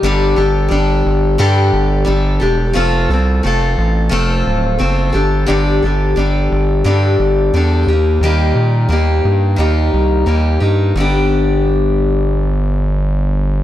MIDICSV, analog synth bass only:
0, 0, Header, 1, 2, 480
1, 0, Start_track
1, 0, Tempo, 682594
1, 26, Time_signature, 4, 2, 24, 8
1, 9587, End_track
2, 0, Start_track
2, 0, Title_t, "Analog synth bass"
2, 0, Program_c, 0, 38
2, 20, Note_on_c, 0, 31, 94
2, 244, Note_off_c, 0, 31, 0
2, 262, Note_on_c, 0, 31, 81
2, 484, Note_off_c, 0, 31, 0
2, 500, Note_on_c, 0, 31, 90
2, 722, Note_off_c, 0, 31, 0
2, 745, Note_on_c, 0, 31, 89
2, 965, Note_off_c, 0, 31, 0
2, 984, Note_on_c, 0, 43, 91
2, 1204, Note_off_c, 0, 43, 0
2, 1217, Note_on_c, 0, 31, 90
2, 1440, Note_off_c, 0, 31, 0
2, 1460, Note_on_c, 0, 31, 97
2, 1681, Note_off_c, 0, 31, 0
2, 1701, Note_on_c, 0, 28, 84
2, 1921, Note_off_c, 0, 28, 0
2, 1941, Note_on_c, 0, 29, 95
2, 2161, Note_off_c, 0, 29, 0
2, 2177, Note_on_c, 0, 36, 87
2, 2398, Note_off_c, 0, 36, 0
2, 2424, Note_on_c, 0, 29, 83
2, 2642, Note_off_c, 0, 29, 0
2, 2658, Note_on_c, 0, 33, 84
2, 2879, Note_off_c, 0, 33, 0
2, 2893, Note_on_c, 0, 29, 86
2, 3116, Note_off_c, 0, 29, 0
2, 3139, Note_on_c, 0, 26, 87
2, 3359, Note_off_c, 0, 26, 0
2, 3380, Note_on_c, 0, 30, 99
2, 3600, Note_off_c, 0, 30, 0
2, 3615, Note_on_c, 0, 31, 90
2, 3837, Note_off_c, 0, 31, 0
2, 3863, Note_on_c, 0, 31, 95
2, 4081, Note_off_c, 0, 31, 0
2, 4102, Note_on_c, 0, 31, 83
2, 4321, Note_off_c, 0, 31, 0
2, 4336, Note_on_c, 0, 31, 81
2, 4558, Note_off_c, 0, 31, 0
2, 4582, Note_on_c, 0, 31, 90
2, 4801, Note_off_c, 0, 31, 0
2, 4818, Note_on_c, 0, 43, 88
2, 5039, Note_off_c, 0, 43, 0
2, 5057, Note_on_c, 0, 31, 90
2, 5279, Note_off_c, 0, 31, 0
2, 5300, Note_on_c, 0, 40, 96
2, 5521, Note_off_c, 0, 40, 0
2, 5536, Note_on_c, 0, 39, 89
2, 5758, Note_off_c, 0, 39, 0
2, 5772, Note_on_c, 0, 39, 91
2, 5997, Note_off_c, 0, 39, 0
2, 6015, Note_on_c, 0, 46, 85
2, 6238, Note_off_c, 0, 46, 0
2, 6251, Note_on_c, 0, 39, 87
2, 6477, Note_off_c, 0, 39, 0
2, 6504, Note_on_c, 0, 43, 85
2, 6724, Note_off_c, 0, 43, 0
2, 6741, Note_on_c, 0, 39, 89
2, 6962, Note_off_c, 0, 39, 0
2, 6987, Note_on_c, 0, 36, 81
2, 7206, Note_off_c, 0, 36, 0
2, 7220, Note_on_c, 0, 39, 91
2, 7442, Note_off_c, 0, 39, 0
2, 7464, Note_on_c, 0, 43, 81
2, 7684, Note_off_c, 0, 43, 0
2, 7701, Note_on_c, 0, 31, 88
2, 9587, Note_off_c, 0, 31, 0
2, 9587, End_track
0, 0, End_of_file